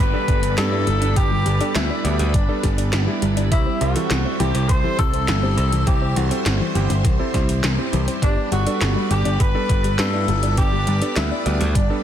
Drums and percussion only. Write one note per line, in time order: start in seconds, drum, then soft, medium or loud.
0.28 kick loud
0.28 closed hi-hat medium
0.43 closed hi-hat medium
0.58 snare loud
0.58 clap loud
0.58 closed hi-hat loud
0.87 closed hi-hat medium
1.02 closed hi-hat medium
1.16 kick loud
1.16 closed hi-hat loud
1.46 closed hi-hat medium
1.61 closed hi-hat medium
1.75 snare loud
1.75 clap loud
1.75 closed hi-hat loud
2.05 closed hi-hat medium
2.19 closed hi-hat medium
2.34 kick loud
2.34 closed hi-hat loud
2.63 kick medium
2.63 snare soft
2.63 closed hi-hat medium
2.78 closed hi-hat medium
2.93 snare loud
2.93 clap loud
2.93 closed hi-hat medium
3.22 closed hi-hat medium
3.37 closed hi-hat medium
3.52 kick loud
3.52 closed hi-hat loud
3.81 closed hi-hat medium
3.96 closed hi-hat medium
4.10 snare loud
4.10 clap medium
4.10 closed hi-hat medium
4.40 closed hi-hat medium
4.55 closed hi-hat medium
4.69 kick loud
4.69 closed hi-hat loud
4.99 kick loud
4.99 closed hi-hat medium
5.14 closed hi-hat medium
5.28 snare loud
5.28 clap medium
5.28 closed hi-hat medium
5.58 closed hi-hat medium
5.72 closed hi-hat medium
5.87 kick loud
5.87 closed hi-hat medium
6.16 closed hi-hat medium
6.31 closed hi-hat medium
6.46 snare loud
6.46 clap medium
6.46 closed hi-hat medium
6.75 closed hi-hat medium
6.90 closed hi-hat medium
7.05 kick loud
7.05 closed hi-hat medium
7.34 kick medium
7.34 snare soft
7.34 closed hi-hat medium
7.49 closed hi-hat medium
7.64 snare loud
7.64 clap medium
7.64 closed hi-hat medium
7.93 closed hi-hat medium
8.08 closed hi-hat medium
8.22 kick loud
8.22 closed hi-hat medium
8.52 closed hi-hat medium
8.67 closed hi-hat medium
8.81 snare loud
8.81 clap medium
8.81 closed hi-hat medium
9.11 closed hi-hat medium
9.25 closed hi-hat medium
9.40 kick loud
9.40 closed hi-hat medium
9.69 kick loud
9.69 closed hi-hat medium
9.84 closed hi-hat medium
9.99 snare loud
9.99 clap medium
9.99 closed hi-hat medium
10.28 closed hi-hat medium
10.43 closed hi-hat medium
10.57 kick loud
10.57 closed hi-hat medium
10.87 closed hi-hat medium
11.02 closed hi-hat medium
11.16 snare loud
11.16 clap loud
11.16 closed hi-hat medium
11.46 closed hi-hat medium
11.61 closed hi-hat medium
11.75 kick loud
11.75 closed hi-hat medium